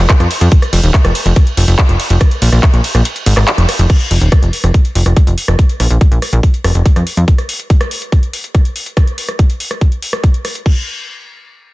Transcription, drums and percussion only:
0.09 kick, clap, closed hi-hat
0.20 cross-stick, closed hi-hat
0.31 open hi-hat, ride
0.41 closed hi-hat
0.52 kick, closed hi-hat
0.62 cross-stick, closed hi-hat
0.73 open hi-hat, ride
0.83 closed hi-hat
0.94 kick, clap, closed hi-hat
1.05 cross-stick, closed hi-hat
1.15 open hi-hat, ride
1.26 closed hi-hat
1.36 kick, cross-stick, closed hi-hat
1.47 closed hi-hat
1.57 open hi-hat, ride
1.68 closed hi-hat
1.78 kick, cross-stick, clap, closed hi-hat
1.89 closed hi-hat
2.00 open hi-hat, ride
2.10 closed hi-hat
2.21 kick, cross-stick, closed hi-hat
2.31 closed hi-hat
2.42 open hi-hat, ride
2.52 cross-stick, closed hi-hat
2.63 kick, clap, closed hi-hat
2.74 closed hi-hat
2.84 open hi-hat, ride
2.95 cross-stick, closed hi-hat
3.05 closed hi-hat
3.16 closed hi-hat
3.26 open hi-hat, ride
3.37 cross-stick, clap
3.48 clap, closed hi-hat
3.58 closed hi-hat
3.69 cross-stick, open hi-hat, ride
3.79 closed hi-hat
3.90 kick, cross-stick, closed hi-hat, crash
4.00 closed hi-hat
4.11 open hi-hat
4.21 closed hi-hat
4.32 kick, cross-stick, closed hi-hat
4.43 closed hi-hat
4.53 open hi-hat
4.64 cross-stick, closed hi-hat
4.74 kick, closed hi-hat
4.85 closed hi-hat
4.95 open hi-hat
5.06 cross-stick, closed hi-hat
5.17 kick, closed hi-hat
5.27 closed hi-hat
5.38 open hi-hat
5.48 cross-stick
5.59 kick, closed hi-hat
5.69 closed hi-hat
5.80 cross-stick, open hi-hat
5.91 closed hi-hat
6.01 kick, closed hi-hat
6.12 closed hi-hat
6.22 cross-stick, open hi-hat
6.33 closed hi-hat
6.43 kick, closed hi-hat
6.54 closed hi-hat
6.64 cross-stick, open hi-hat
6.75 closed hi-hat
6.86 kick, closed hi-hat
6.96 cross-stick, closed hi-hat
7.07 open hi-hat
7.17 closed hi-hat
7.28 kick, closed hi-hat
7.38 cross-stick, closed hi-hat
7.49 open hi-hat
7.60 closed hi-hat
7.70 kick, closed hi-hat
7.81 cross-stick, closed hi-hat
7.91 open hi-hat
8.02 closed hi-hat
8.12 kick, cross-stick, closed hi-hat
8.23 closed hi-hat
8.33 open hi-hat
8.44 closed hi-hat
8.55 kick, cross-stick, closed hi-hat
8.65 closed hi-hat
8.76 open hi-hat
8.86 closed hi-hat
8.97 kick, cross-stick, closed hi-hat
9.07 closed hi-hat
9.18 open hi-hat
9.29 cross-stick, closed hi-hat
9.39 kick, closed hi-hat
9.50 closed hi-hat
9.60 open hi-hat
9.71 cross-stick, closed hi-hat
9.81 kick, closed hi-hat
9.92 closed hi-hat
10.02 open hi-hat
10.13 cross-stick, closed hi-hat
10.24 kick, closed hi-hat
10.34 closed hi-hat
10.45 cross-stick, open hi-hat
10.55 closed hi-hat
10.66 kick, crash

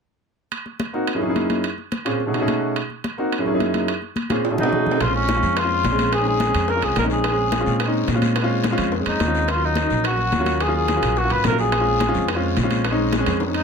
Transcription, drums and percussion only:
0.52 high conga, high timbale
0.66 high conga
0.80 high conga, high timbale
0.94 high conga
1.07 high conga, high timbale
1.22 high conga
1.36 high conga, high timbale
1.50 high conga, high timbale
1.64 high conga, high timbale
1.78 high conga
1.92 high conga, high timbale
2.06 high timbale
2.20 high conga
2.34 high conga, high timbale
2.48 high conga, high timbale
2.62 high conga
2.76 high conga, high timbale
2.90 high conga
3.04 high conga, high timbale
3.18 high conga
3.32 high conga, high timbale
3.46 high conga
3.60 high conga, high timbale
3.74 high conga, high timbale
3.88 high conga, high timbale
4.02 high conga
4.16 high conga, high timbale
4.30 high conga, high timbale
4.45 high timbale
4.58 low conga
4.63 low timbale
4.72 low conga
4.86 low conga
4.91 low timbale
5.00 high bongo, high conga, high timbale, long guiro
5.14 high bongo, high conga
5.29 high bongo, high conga, high timbale, short guiro
5.43 high conga, short guiro
5.56 high bongo, high conga, high timbale, long guiro
5.71 high bongo, high conga
5.84 high bongo, low bongo, high conga, high timbale, low timbale, short guiro
5.98 high bongo, high conga, high timbale, short guiro
6.12 high bongo, high conga, high timbale, long guiro
6.26 high bongo, high conga
6.40 high bongo, high conga, high timbale, short guiro
6.54 high timbale, short guiro
6.68 high bongo, high conga, long guiro
6.82 high bongo, high conga, high timbale
6.96 high bongo, low bongo, high conga, high timbale, low timbale, short guiro
7.10 high bongo, high conga, short guiro
7.24 high bongo, high conga, high timbale, long guiro
7.38 high bongo, high conga
7.52 high bongo, high conga, high timbale, short guiro
7.66 high conga, short guiro
7.80 high bongo, high conga, high timbale, long guiro
7.94 high bongo, high conga
8.08 high bongo, low bongo, high conga, high timbale, short guiro
8.22 high bongo, high conga, high timbale, short guiro
8.36 high bongo, high conga, high timbale, long guiro
8.50 high bongo, high conga
8.64 high bongo, high conga, high timbale, short guiro
8.78 high timbale, short guiro
8.92 high bongo, high conga, long guiro
9.06 high bongo, high conga, high timbale
9.20 high bongo, low bongo, high conga, high timbale, short guiro
9.34 high bongo, high conga, short guiro
9.48 high bongo, high conga, high timbale, long guiro
9.62 high bongo, high conga
9.75 high bongo, high conga, high timbale, short guiro
9.90 high conga, short guiro
10.04 high bongo, high conga, high timbale, long guiro
10.18 high bongo, high conga
10.32 high bongo, low bongo, high conga, high timbale, short guiro
10.46 high bongo, high conga, high timbale, short guiro
10.60 high bongo, high conga, high timbale, long guiro
10.74 high bongo, high conga
10.88 high bongo, high conga, high timbale, short guiro
11.02 high timbale, short guiro
11.16 high bongo, high conga, long guiro
11.30 high bongo, high conga, high timbale
11.44 high bongo, low bongo, high conga, high timbale, low timbale, short guiro
11.58 high bongo, high conga, short guiro
11.72 high bongo, high conga, high timbale, long guiro
11.86 high bongo, high conga
12.00 high bongo, high conga, high timbale, short guiro
12.14 high conga, short guiro
12.28 high bongo, high conga, high timbale, long guiro
12.43 high bongo, high conga
12.57 high bongo, low bongo, high conga, high timbale, short guiro
12.70 high bongo, high conga, high timbale, short guiro
12.85 high bongo, high timbale, long guiro
12.99 high bongo, high conga
13.12 high bongo, high conga, high timbale, short guiro
13.26 high bongo, high timbale, short guiro
13.40 high bongo, high conga, long guiro
13.54 high conga, high timbale

